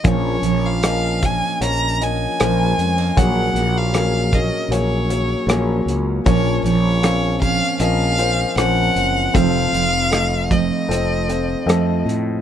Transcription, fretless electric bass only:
\new Staff \with { instrumentName = "Fretless electric bass" } { \clef bass \time 4/4 \key bes \minor \tempo 4 = 77 bes,,8 bes,,4. bes,,4 bes,,8 f,8 | bes,,8 bes,,4. bes,,4 bes,,8 des,8 | bes,,8 bes,,4. bes,,4 bes,,8 ges,,8 | f,,8 f,,4. f,,4 f,8 a,8 | }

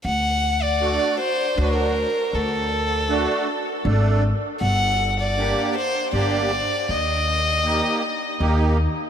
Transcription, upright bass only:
\new Staff \with { instrumentName = "Upright bass" } { \clef bass \time 3/4 \tempo 4 = 79 d,2 d,4 | d,2 gis,,4 | g,,2 g,,4 | ees,2 ees,4 | }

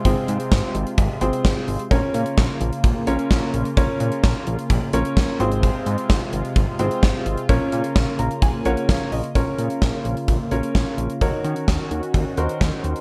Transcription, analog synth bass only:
\new Staff \with { instrumentName = "Analog synth bass" } { \clef bass \time 4/4 \key bes \minor \tempo 4 = 129 aes,,16 r16 aes,16 r16 aes,,16 r16 aes,,16 r16 aes,,16 r16 aes,,16 r16 aes,,16 r16 aes,,16 r16 | bes,,16 r16 bes,16 r16 bes,,16 r16 bes,,16 r16 bes,,16 r16 bes,,16 r16 bes,,16 r16 bes,,16 r16 | bes,,16 r16 bes,16 r16 bes,,16 r16 bes,,16 r16 bes,,16 r16 bes,,16 r16 bes,,16 r16 aes,,8~ | aes,,16 r16 aes,16 r16 aes,,16 r16 aes,,16 r16 aes,,16 r16 aes,,16 r16 aes,,16 r16 aes,,16 r16 |
bes,,16 r16 bes,16 r16 bes,,16 r16 bes,,16 r16 bes,,16 r16 bes,,16 r16 bes,,16 r16 bes,,16 r16 | bes,,16 r16 bes,16 r16 bes,,16 r16 bes,,16 r16 bes,,16 r16 bes,,16 r16 bes,,16 r16 bes,,16 r16 | ees,16 r16 ees16 r16 ees,16 r16 ees,16 r16 ees,16 r16 ees,16 r16 ees,16 r16 ees,16 r16 | }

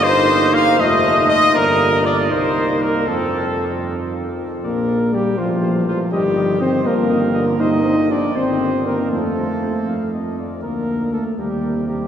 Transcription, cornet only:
\new Staff \with { instrumentName = "Cornet" } { \time 6/8 \key f \mixolydian \tempo 4. = 80 c''4 f''8 ees''4 ees''8 | bes'4 d''8 c''4 bes'8 | a'4. r4. | d''8 d''8 d''8 c''8 c''8 c''8 |
ees''8 ees''8 ees''8 ees''8 ees''8 ees''8 | c''8 c''8 c''8 c''8 c''8 c''8 | c''8 c''8 c''8 f''8 ees''8 d''8 | bes'8 bes'8 bes'8 bes'8 bes'8 bes'8 | }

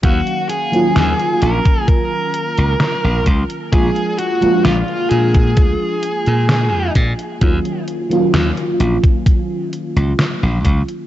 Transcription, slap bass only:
\new Staff \with { instrumentName = "Slap bass" } { \clef bass \time 4/4 \key ees \minor \tempo 4 = 65 ees,16 r8. ees,16 r16 bes,,16 r4 des,16 r16 bes,,16 des,16 r16 | bes,,16 r8. bes,,16 r16 bes,8 d,16 r8 bes,8 f,16 bes,16 r16 | ees,16 r8. ees,16 r16 bes,,16 r4 des,16 r16 bes,,16 des,16 r16 | }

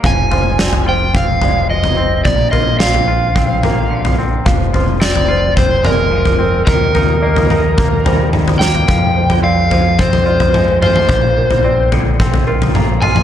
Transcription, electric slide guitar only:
\new Staff \with { instrumentName = "Electric slide guitar" } { \time 4/4 \key f \dorian \tempo 4 = 109 aes''4. g''8 f''4 ees''4 | d''8 ees''8 f''2~ f''8 r8 | r4 d''4 c''8 bes'4. | bes'2. r8 g''8~ |
g''4 f''4 c''4. c''8~ | c''4. r2 aes''8 | }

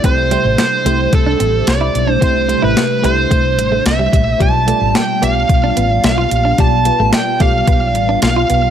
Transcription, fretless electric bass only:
\new Staff \with { instrumentName = "Fretless electric bass" } { \clef bass \time 4/4 \key c \major \tempo 4 = 110 c,8. a,,16 r8 c,8 c,8 a,,8 c,8 b,,8 | c,8. a,,16 r8 c,8 c,8 a,,8 c,8 bes,,8 | b,,8. a,,16 r8 b,,8 b,,8 a,,8 b,,8 bes,,8 | b,,8. a,,16 r8 b,,8 b,,8 a,,8 b,,8 b,,8 | }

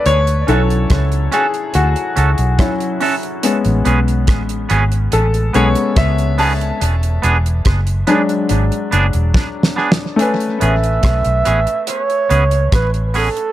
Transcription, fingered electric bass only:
\new Staff \with { instrumentName = "Fingered electric bass" } { \clef bass \time 4/4 \key a \major \tempo 4 = 71 d,8 b,,8 cis,8 r8 d,16 r16 cis,16 b,,16 r4 | r16 a,,16 b,,8 a,,8 gis,,8 a,,8 b,,16 r16 cis,4 | e,,8 e,,8 fis,,8 r8 gis,,16 r16 fis,,16 e,,16 r4 | r8 a,,8 b,,16 b,,16 a,,16 r8. cis,8 a,,8. r16 | }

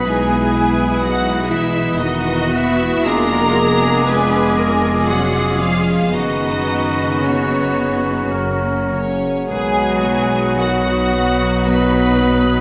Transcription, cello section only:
\new Staff \with { instrumentName = "Cello section" } { \time 3/4 \key b \major \tempo 4 = 57 dis'8 e'8 dis'4 fis'4 | f'8 aes'8 ces''8 ais'8 aes'4 | fis'2~ fis'8 r8 | gis'8 fis'2~ fis'8 | }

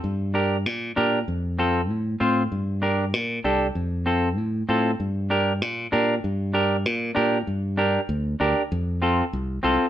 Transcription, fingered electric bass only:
\new Staff \with { instrumentName = "Fingered electric bass" } { \clef bass \time 4/4 \key g \minor \tempo 4 = 194 g,2 bes,4 bes,4 | f,2 a,4 a,4 | g,2 bes,4 c,4 | f,2 a,4 a,4 |
g,2 bes,4 bes,4 | g,2 bes,4 bes,4 | g,2 d,4 d,8 r8 | f,2 c,4 c,8 r8 | }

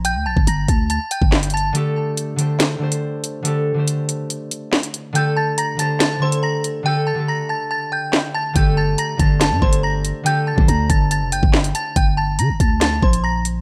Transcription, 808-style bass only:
\new Staff \with { instrumentName = "808-style bass" } { \clef bass \time 4/4 \key g \minor \tempo 4 = 141 bes,,16 d,16 bes,,16 g,,16 g,,8 d,8. r8 g,,4~ g,,16 | r1 | r1 | r1 |
r1 | g,,4 r8 g,,8. g,16 g,,4~ g,,16 r16 | r8. bes,,16 d,8 g,,8. f,,16 g,,16 g,,8. r8 | g,,4 d16 g,,16 d,4 bes,,4. | }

